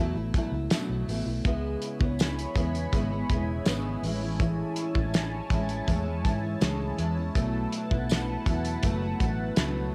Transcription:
Already playing: E2 B2 F#3
0.00 A3 E4
0.15 A1 F#3 A3 E4
0.34 B2 F#3 A3 E4, kick, closed hi-hat
0.51 C#2 A3 E4
0.56 F#3
0.70 B2 F#3 A3 E4, snare, closed hi-hat, tambourine
0.89 B1
1.08 A1 B2 F#3 A3 E4, open hi-hat
1.26 B1 F#3 A3 E4
1.44 C#2 C#3 G#3 B3 E4 C#5 G#5 B5, kick, closed hi-hat
1.82 closed hi-hat
1.99 C#2 G#3 B3 E4, kick
2.19 snare, closed hi-hat, tambourine
2.39 closed hi-hat
2.54 E2 C#3 G#3 B3 E4, kick, closed hi-hat
2.75 closed hi-hat
2.92 G#1 C#3 G#3 B3 E4, kick, closed hi-hat
3.10 G#3 B3 E4
3.29 E1 C#3 G#3 B3 E4, kick, closed hi-hat
3.66 G#1 C#3 G#3 B3 E4, snare, closed hi-hat, tambourine
4.02 A1 E3 G#3 C#4 C#5 A5, open hi-hat
4.07 E4
4.23 G#3 C#4 E4
4.40 A2 E3 G#3 C#4 E4, kick, closed hi-hat
4.76 closed hi-hat
4.95 A1 G#3 C#4 E4, kick
5.14 snare, closed hi-hat, tambourine
5.50 A1 E3 G#3 C#4 E4, kick, closed hi-hat
5.69 closed hi-hat
5.87 E2 A2 E3 G#3 C#4 E4, kick, closed hi-hat
6.05 G#3 C#4 E4
6.24 G#2 E3 G#3 C#4 E4, kick, closed hi-hat
6.43 G#3 C#4 E4
6.61 C#2 A2 E3 G#3 C#4 E4, snare, closed hi-hat, tambourine
6.97 E2 E3 G#3 C#4 E4, closed hi-hat
7.17 G#3 C#4 E4
7.34 B1 B2 F#3 A3 E4 B4 F#5, kick, closed hi-hat
7.73 closed hi-hat
7.91 B1 F#3 A3 E4, kick
8.09 snare, closed hi-hat, tambourine
8.28 F#3 A3 E4
8.46 E2 B2 F#3 A3 E4, kick, closed hi-hat
8.65 closed hi-hat
8.83 F#1 B2 F#3 A3 E4, kick, closed hi-hat
9.02 F#3 A3 E4
9.20 A1 B2 F#3 A3 E4, kick, closed hi-hat
9.56 C#2 B2 F#3 A3 E4, snare, closed hi-hat, tambourine

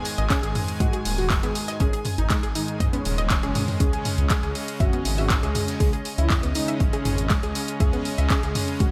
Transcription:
Already playing: G#2 D#3 G#3 G#5
0.05 closed hi-hat, open hi-hat
0.18 G#1 D#5, closed hi-hat
0.30 C#4 G#4, kick, snare, clap, closed hi-hat
0.43 G#1 G#4, closed hi-hat
0.55 G#2 D#3 G#3, mid tom, open hi-hat
0.68 closed hi-hat
0.80 G#2 G#3 F#4, kick, closed hi-hat
0.93 G#4, closed hi-hat
1.05 D#1, closed hi-hat, open hi-hat
1.18 F#4, open hi-hat
1.30 D#5, kick, snare, clap, closed hi-hat, mid tom
1.43 G#1 B3 G#4, closed hi-hat
1.55 closed hi-hat, open hi-hat
1.68 D#5, snare, closed hi-hat
1.80 G#1 G#2 D#3 G#3 C#4 G#4, kick, closed hi-hat
1.93 G#4, closed hi-hat
2.05 closed hi-hat, mid tom, open hi-hat
2.18 G#1 D#4, closed hi-hat
2.30 G#3, kick, snare, clap, closed hi-hat
2.43 G#1 G#4, closed hi-hat
2.55 G#2 D#3 G#3 D#4, closed hi-hat, open hi-hat
2.68 closed hi-hat
2.80 G#2 D#5, kick, closed hi-hat, mid tom, swell
2.93 B3 C#4, closed hi-hat
3.05 D#1 G#2 D#3 G#3, closed hi-hat, open hi-hat
3.18 D#5, closed hi-hat
3.30 C#4, kick, snare, clap, closed hi-hat
3.43 F#1 G#2 D#3 G#3 C#4 G#4, closed hi-hat, high tom
3.55 snare, closed hi-hat, mid tom, open hi-hat
3.68 mid tom, open hi-hat
3.80 C#2 C#3 G#3 C#4 G#4, kick, closed hi-hat
3.93 G#4, closed hi-hat
4.05 closed hi-hat, mid tom, open hi-hat
4.18 C#2 G#4, closed hi-hat
4.30 G#3 G#4, kick, snare, clap, closed hi-hat
4.37 D#5
4.43 C#2 G#4, closed hi-hat
4.55 C#3 G#3 C#4, open hi-hat
4.68 closed hi-hat
4.80 G#1 F#4 E5, kick, closed hi-hat, mid tom
4.93 B3, closed hi-hat
5.05 G#1, closed hi-hat, open hi-hat
5.18 F#4 E5, open hi-hat
5.30 C#4, kick, snare, clap, closed hi-hat
5.43 C#2 G#4, closed hi-hat
5.55 closed hi-hat, mid tom, open hi-hat
5.68 snare, closed hi-hat
5.80 C#2 C#3 G#3 C#4 G#4, kick, closed hi-hat
5.93 G#4, closed hi-hat
6.05 closed hi-hat, open hi-hat
6.18 C#2 E4, closed hi-hat
6.30 E5, kick, snare, clap, closed hi-hat, mid tom
6.43 C#2 B3, closed hi-hat
6.55 C#3 G#3 C#4 D#4, closed hi-hat, open hi-hat
6.68 E5, closed hi-hat
6.80 G#1 C#4, kick, closed hi-hat
6.93 G#4, closed hi-hat
7.05 G#1, closed hi-hat, mid tom, open hi-hat
7.18 closed hi-hat
7.30 G#3, kick, snare, clap, closed hi-hat
7.43 C#2 G#4, closed hi-hat
7.55 snare, closed hi-hat, open hi-hat
7.68 closed hi-hat
7.80 C#2 C#3 G#3 C#4 G#4 E5, kick, closed hi-hat, mid tom
7.93 B3, closed hi-hat
8.05 closed hi-hat, open hi-hat
8.18 C#2 E5, closed hi-hat
8.30 C#4 G#4, kick, snare, clap, closed hi-hat
8.43 C#2 G#4, closed hi-hat
8.55 C#3 G#3 C#4, mid tom, open hi-hat
8.68 closed hi-hat
8.80 G#1 G#3 F#4, kick, closed hi-hat

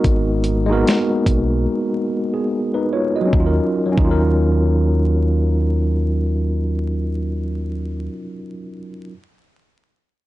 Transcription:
Already playing: G#3 B3 D#4 F#4 A#4 D#5
0.04 G#1, kick, closed hi-hat
0.44 closed hi-hat
0.66 G#3 A#3 D#4
0.71 B3 F#4 A#4
0.87 snare, closed hi-hat
1.26 B1, kick, closed hi-hat
2.34 B3 G#4
2.74 D#4 B4
2.93 F4 C#5
3.16 F#4 D#5
3.21 F#3
3.27 C#4
3.33 D#2 D#4, kick
3.40 F4
3.46 A#4
3.86 F#3
3.92 C#4
3.98 D#2 D#4, kick
4.05 F4
4.11 A#4

